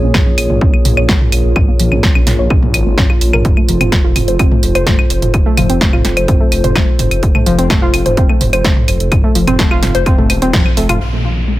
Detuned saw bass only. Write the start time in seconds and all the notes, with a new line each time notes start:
0.03 A#1
0.14 A#1
0.26 A#1
0.38 A#1
0.50 A#1
0.61 A#1
0.85 A#1
0.97 A#1
1.09 A#1
1.32 A#1
1.44 A#1
1.56 A#1
1.79 A#1
1.92 A#1
2.03 A#1
2.15 A#1
2.27 A#1
2.39 A#1
2.50 A#1
2.74 G#1
2.86 G#1
2.98 A#1
3.21 A#1
3.33 A#1
3.45 F1
3.68 F1
3.81 F1
3.92 F1
4.04 F1
4.16 F1
4.28 F1
4.39 F1
4.63 F1
4.75 F1
4.87 F1
5.10 F1
5.22 F1
5.34 F1
5.57 F1
5.70 F1
5.81 F1
5.93 F1
6.05 F1
6.17 F1
6.28 F1
6.52 F1
6.64 F1
6.76 F1
6.99 F1
7.11 F1
7.23 F1
7.46 F1
7.59 F1
7.70 F1
7.82 F1
7.94 F1
8.06 F1
8.17 F1
8.41 F1
8.53 F1
8.64 F1
8.88 F1
9.00 F1
9.12 F1
9.35 F1
9.48 F1
9.59 F1
9.71 F1
9.83 F1
9.95 F1
10.06 F1
10.30 D#1
10.42 D#1
10.53 F1
10.77 F1
10.89 F1
11.01 A#1